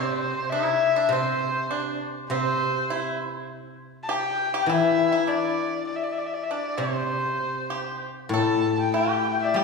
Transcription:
Already playing: guzheng C3, pipa C4, erhu C5
0.19 erhu C5
0.49 pipa E4, erhu E5
0.96 pipa D4
1.09 guzheng C3, pipa C4, erhu C5
1.71 pipa D4
2.30 guzheng C3, pipa C4, erhu C5
2.90 pipa E4
4.03 erhu A5
4.09 pipa G4, erhu G5
4.54 pipa G4
4.62 erhu G5
4.66 guzheng E3, pipa E4
4.70 erhu E5
5.12 pipa E4
5.27 pipa D4, erhu D5
5.87 erhu D5
5.96 erhu E5
6.03 erhu D5
6.12 erhu E5
6.19 erhu D5
6.26 erhu E5
6.34 erhu D5
6.43 erhu E5
6.51 pipa D4, erhu D5
6.78 guzheng C3, pipa C4, erhu C5
7.70 pipa G4
8.29 guzheng A2
8.34 pipa A4, erhu A5
8.76 erhu G5 A5
8.94 pipa G4, erhu G5
9.42 erhu D5 E5
9.49 erhu E5
9.54 guzheng G3, pipa G4, erhu G5

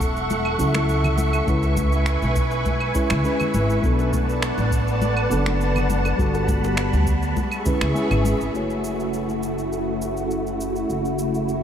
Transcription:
Already playing: upright bass E1, fm electric piano F#3 C#4 E4 A4, string machine A4 E5 F#5 C#6, synth texture C#6
0.01 kick, shaker
0.16 shaker
0.30 high conga, shaker
0.45 claves
0.58 upright bass C#2, fm electric piano F#3 C#4 E4 A4, shaker
0.74 finger snap, high bongo, high conga, shaker
0.89 shaker
1.04 low conga, claves, shaker
1.18 high conga, shaker
1.33 high bongo, claves, shaker
1.47 upright bass C#2, fm electric piano G#3 C#4 E4 B4, string machine B4 G#5, kick, shaker
1.63 high bongo, shaker
1.77 kick, high conga, shaker
1.92 shaker
2.06 finger snap, shaker
2.22 upright bass B1, high conga, shaker
2.36 kick, shaker
2.51 shaker
2.65 kick, high conga, shaker
2.80 claves
2.94 fm electric piano G#3 C#4 E4 B4, kick, shaker
3.10 upright bass C#2, finger snap, high conga, claves, shaker
3.24 fm electric piano G#3 C#4 E4 B4, shaker
3.40 low conga, claves, shaker
3.54 upright bass G#1, high conga, shaker
3.70 shaker
3.82 upright bass B1, fm electric piano F#3 B3 D4 A4, string machine B4 D5 F#5 A5, kick, shaker
3.99 high bongo, shaker
4.13 kick, high conga, shaker
4.29 shaker
4.42 finger snap, shaker
4.58 upright bass A1, high conga, shaker
4.72 kick, shaker
4.88 shaker
5.02 high conga, shaker
5.17 claves
5.30 upright bass F#1, fm electric piano F#3 B3 D4 A4, shaker
5.46 finger snap, high bongo, high conga, shaker
5.61 shaker
5.76 low conga, claves, shaker
5.90 high conga, shaker
6.05 high bongo, claves, shaker
6.17 upright bass G1, fm electric piano G3 B3 F#4 A4, string machine G3 B5, kick, shaker
6.34 high bongo, shaker
6.48 kick, high conga, shaker
6.64 high bongo, shaker
6.77 finger snap, shaker
6.93 upright bass D2, high conga, shaker
7.07 kick, shaker
7.22 shaker
7.36 string machine G#4 E5 C#6, kick, high conga, shaker
7.51 claves, shaker
7.65 fm electric piano G#3 C#4 E4 B4, kick, low conga, shaker
7.81 upright bass C#2, finger snap, high conga, claves, shaker
7.95 fm electric piano G#3 C#4 E4 B4, shaker
8.11 upright bass G#1, low conga, claves, shaker
8.25 high conga, shaker
8.40 upright bass G#1, shaker
8.53 upright bass F#1, string machine C#3 A3 E4 F#4, fm electric piano A3 E4 F#4 C#5, shaker
8.70 shaker
8.84 shaker
9.00 shaker
9.14 shaker
9.29 shaker
9.43 shaker
9.58 shaker
9.73 shaker
10.02 shaker
10.17 shaker
10.31 shaker
10.47 shaker
10.61 shaker
10.76 shaker
10.89 upright bass F#1, shaker
11.05 shaker
11.19 shaker
11.34 shaker
11.49 shaker

